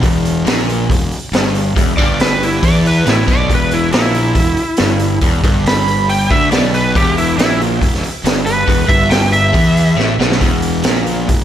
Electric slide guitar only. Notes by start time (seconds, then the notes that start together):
1.97 D5
2.21 B4
2.44 E4
2.65 D5
2.87 B4
3.09 E4
3.31 D5
3.54 B4
3.73 E4
3.93 E4
5.68 B5
6.09 G5
6.31 E5
6.52 D5
6.74 B4
6.96 G4
7.18 E4
7.38 E4
8.46 B4
8.88 E5
9.10 G5
9.32 E5